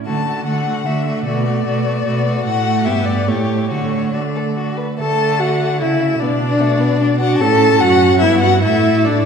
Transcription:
0.06 0.42 D3 soft
0.06 0.27 A3 soft
0.06 0.26 F#4 soft
0.06 0.44 A5 medium
0.26 0.47 A3 soft
0.26 0.46 F#4 soft
0.47 0.82 D3 soft
0.47 0.67 A3 soft
0.47 0.66 F#4 soft
0.47 0.88 F#5 medium
0.67 0.87 A3 soft
0.67 0.85 F#4 soft
0.86 1.22 D3 soft
0.86 1.07 A3 soft
0.86 1.06 F#4 soft
0.86 1.25 E5 medium
1.07 1.26 A3 soft
1.07 1.25 F#4 soft
1.26 1.61 B2 soft
1.26 1.46 A3 soft
1.26 1.44 F#4 soft
1.26 2.43 D5 medium
1.45 1.65 A3 soft
1.45 1.65 F#4 soft
1.65 2.01 B2 soft
1.65 1.85 A3 soft
1.65 1.85 F#4 soft
1.85 2.05 A3 soft
1.85 2.05 F#4 soft
2.06 2.41 B2 medium
2.06 2.24 A3 soft
2.06 2.25 F#4 soft
2.25 2.45 A3 soft
2.25 2.46 F#4 soft
2.45 2.88 A2 soft
2.45 2.88 A3 soft
2.45 2.87 F#4 soft
2.45 2.86 F#5 medium
2.85 3.29 G2 soft
2.85 3.29 B3 soft
2.85 3.27 G4 soft
2.85 3.07 E5 medium
3.05 3.30 D5 medium
3.27 3.72 A2 soft
3.27 3.69 A3 soft
3.27 3.70 G4 soft
3.27 3.69 C#5 medium
3.69 4.79 D3 soft
3.69 4.12 A3 soft
3.69 4.13 F#4 soft
3.69 4.15 C#5 soft
4.13 4.78 A3 soft
4.13 4.22 F#4 soft
4.13 4.79 D5 soft
4.36 4.44 A4 soft
4.56 4.79 F#4 soft
4.77 4.99 B4 soft
5.00 5.83 D3 soft
5.00 6.17 A3 soft
5.00 5.41 A4 medium
5.00 5.42 A5 medium
5.39 5.80 F#4 medium
5.39 5.81 F#5 medium
5.81 6.21 C#3 soft
5.81 6.20 E4 medium
5.81 6.21 E5 medium
6.20 7.39 B2 medium
6.20 6.30 B3 soft
6.20 7.19 D4 medium
6.20 7.20 D5 medium
6.42 6.62 D4 medium
6.60 6.82 A3 medium
6.80 7.00 B3 medium
7.01 7.09 D4 medium
7.20 7.42 D4 medium
7.20 7.42 F#4 medium
7.20 7.38 F#5 medium
7.39 7.80 A2 medium
7.39 8.23 C#4 medium
7.39 7.80 A4 medium
7.39 7.82 A5 medium
7.80 8.23 F#2 medium
7.80 8.21 F#4 medium
7.80 8.19 F#5 medium
8.20 8.65 G2 medium
8.20 8.62 B3 medium
8.20 8.42 E4 medium
8.20 8.40 E5 medium
8.41 8.62 F#4 medium
8.41 8.62 F#5 medium
8.63 9.25 A2 medium
8.63 9.25 A3 medium
8.63 9.07 E4 medium
8.63 9.06 E5 medium
9.05 9.25 D4 medium
9.05 9.25 D5 medium

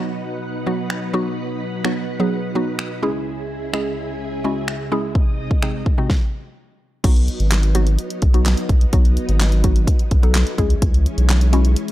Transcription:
0.00 2.99 B2 medium
0.00 0.35 F#3 medium
0.00 2.99 F#3 medium
0.00 0.35 B3 medium
0.00 0.36 D#4 medium
0.00 2.99 D#4 medium
0.00 0.36 F#4 medium
0.00 2.99 B4 medium
0.00 2.99 F#5 medium
0.67 0.93 F#3 medium
0.67 0.93 B3 medium
0.67 0.93 D#4 medium
0.67 0.93 F#4 medium
0.90 finger snap loud
1.13 1.53 F#3 loud
1.13 1.54 B3 medium
1.13 1.54 D#4 medium
1.13 1.54 F#4 loud
1.85 2.04 F#3 medium
1.85 2.05 B3 medium
1.85 2.05 D#4 medium
1.85 2.05 F#4 medium
1.85 finger snap loud
2.20 2.40 F#3 medium
2.20 2.40 B3 medium
2.20 2.40 D#4 medium
2.20 2.40 G#4 loud
2.55 2.89 F#3 medium
2.55 2.89 B3 medium
2.55 2.89 D#4 medium
2.55 2.89 F#4 loud
2.79 finger snap loud
3.03 5.13 C#2 medium
3.03 5.13 C#3 medium
3.03 3.59 G#3 medium
3.03 5.13 G#3 medium
3.03 3.59 C#4 medium
3.03 5.13 E4 medium
3.03 3.59 E4 medium
3.03 5.13 G#4 medium
3.03 3.60 G#4 loud
3.73 4.13 G#3 medium
3.73 4.13 C#4 medium
3.73 4.14 E4 medium
3.73 4.14 G#4 medium
3.73 finger snap loud
4.44 4.71 G#3 medium
4.44 4.71 C#4 medium
4.44 4.71 E4 medium
4.44 4.71 F#4 medium
4.68 finger snap loud
4.92 5.15 G#3 loud
4.92 5.15 C#4 medium
4.92 5.15 E4 medium
4.92 5.15 G#4 loud
5.15 6.09 C2 medium
5.15 6.09 C3 medium
5.15 6.09 G#3 medium
5.15 6.09 D#4 medium
5.15 6.09 D#5 medium
5.15 kick loud
5.51 kick medium
5.62 5.82 C3 medium
5.62 5.82 G#3 medium
5.62 5.83 C4 medium
5.62 5.83 D#4 medium
5.62 5.83 G#4 medium
5.62 finger snap loud
5.86 kick medium
5.98 6.10 C3 medium
5.98 6.10 G#3 medium
5.98 6.10 C4 medium
5.98 6.10 D#4 medium
5.98 6.10 F#4 loud
6.10 kick loud
6.10 snare medium
7.04 7.29 B1 loud
7.04 10.55 F#3 medium
7.04 7.44 F#3 medium
7.04 10.55 B3 medium
7.04 7.44 B3 medium
7.04 10.55 D#4 medium
7.04 7.44 D#4 medium
7.04 7.44 F#4 loud
7.04 kick loud
7.04 closed hi-hat medium
7.04 crash medium
7.16 closed hi-hat soft
7.28 closed hi-hat medium
7.40 7.98 G#1 medium
7.40 closed hi-hat soft
7.51 snare medium
7.51 clap loud
7.51 closed hi-hat medium
7.63 closed hi-hat medium
7.75 8.08 F#3 medium
7.75 8.08 B3 medium
7.75 8.08 D#4 medium
7.75 8.08 F#4 loud
7.75 closed hi-hat medium
7.87 closed hi-hat soft
7.99 closed hi-hat medium
8.10 closed hi-hat medium
8.22 8.55 B1 medium
8.22 kick medium
8.22 closed hi-hat medium
8.34 8.67 F#3 medium
8.34 8.67 B3 medium
8.34 8.67 D#4 medium
8.34 8.67 F#4 medium
8.34 closed hi-hat medium
8.46 snare medium
8.46 clap loud
8.46 closed hi-hat medium
8.57 closed hi-hat medium
8.69 8.86 B1 medium
8.69 kick medium
8.69 closed hi-hat medium
8.81 closed hi-hat soft
8.93 9.18 B1 loud
8.93 9.33 F#3 medium
8.93 9.33 B3 medium
8.93 9.33 D#4 medium
8.93 9.33 F#4 loud
8.93 kick loud
8.93 closed hi-hat medium
9.05 closed hi-hat soft
9.17 closed hi-hat medium
9.29 9.87 G#1 loud
9.29 closed hi-hat soft
9.40 snare medium
9.40 clap loud
9.40 closed hi-hat medium
9.52 closed hi-hat medium
9.64 9.97 F#3 medium
9.64 9.97 B3 medium
9.64 9.97 D#4 medium
9.64 9.97 F#4 medium
9.64 kick medium
9.64 closed hi-hat medium
9.76 closed hi-hat medium
9.87 kick loud
9.87 closed hi-hat medium
9.99 closed hi-hat soft
10.11 10.44 B1 medium
10.11 kick medium
10.11 closed hi-hat medium
10.23 10.56 F#3 medium
10.23 10.56 B3 medium
10.23 10.56 D#4 medium
10.23 10.56 A4 medium
10.23 closed hi-hat medium
10.35 snare medium
10.35 clap loud
10.35 closed hi-hat medium
10.47 closed hi-hat medium
10.58 10.75 C#2 loud
10.58 11.92 E3 medium
10.58 11.34 G#3 medium
10.58 11.92 G#3 medium
10.58 11.34 C#4 medium
10.58 11.92 C#4 medium
10.58 11.34 E4 medium
10.58 11.34 G#4 loud
10.58 kick medium
10.58 closed hi-hat medium
10.70 closed hi-hat soft
10.82 11.07 C#2 loud
10.82 kick loud
10.82 closed hi-hat medium
10.94 closed hi-hat soft
11.06 closed hi-hat medium
11.18 11.76 B1 loud
11.18 closed hi-hat soft
11.29 snare medium
11.29 clap loud
11.29 closed hi-hat medium
11.41 closed hi-hat medium
11.53 11.86 G#3 medium
11.53 11.86 C#4 medium
11.53 11.86 E4 medium
11.53 11.86 F#4 medium
11.53 closed hi-hat medium
11.65 closed hi-hat medium
11.76 closed hi-hat medium
11.88 closed hi-hat medium

